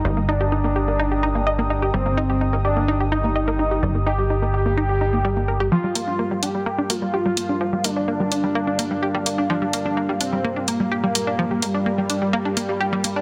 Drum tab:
HH |--------|--------|--------|-x-x-x-x|

HH |-x-x-x-x|-x-x-x-x|-x-x-x-x|